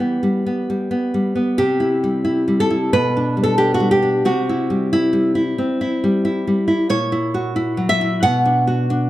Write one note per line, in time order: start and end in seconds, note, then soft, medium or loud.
0.00 0.18 E3 medium
0.00 0.22 G3 soft
0.00 0.45 B3 medium
0.00 1.20 G4 medium
0.23 0.69 G3 medium
0.46 0.90 B3 medium
0.70 1.13 G3 soft
0.91 1.34 B3 medium
1.14 1.58 G3 medium
1.35 1.58 B3 medium
1.58 2.90 C3 medium
1.58 2.55 G4 loud
1.80 2.23 E4 medium
2.04 2.46 G3 medium
2.25 2.69 E4 medium
2.48 2.93 G3 medium
2.60 2.93 A4 loud
2.70 2.93 E4 medium
2.93 4.22 B2 medium
2.93 3.41 B4 loud
3.17 3.57 D4 medium
3.37 3.79 G3 medium
3.43 3.57 A4 loud
3.58 4.01 D4 medium
3.58 3.74 G4 loud
3.74 3.91 F#4 loud
3.80 4.25 G3 medium
3.91 4.24 G4 loud
4.02 4.25 D4 medium
4.25 5.54 C3 medium
4.25 4.89 F#4 loud
4.49 4.92 E4 medium
4.70 5.12 G3 medium
4.93 5.34 E4 loud
5.13 6.03 G3 medium
5.35 5.80 E4 medium
5.58 6.58 C4 medium
5.81 6.24 E4 medium
6.04 6.46 G3 medium
6.25 6.66 E4 medium
6.47 6.90 G3 medium
6.68 6.89 E4 medium
6.90 8.19 A#2 medium
6.90 7.85 C#5 loud
7.12 7.55 E4 medium
7.34 8.23 F#4 medium
7.56 8.00 E4 medium
7.77 8.23 F#3 medium
7.89 8.21 E5 loud
8.01 8.23 E4 medium
8.23 9.10 B2 medium
8.23 9.10 F#5 loud
8.45 8.89 D4 medium
8.67 9.10 F#4 medium
8.90 9.10 D4 medium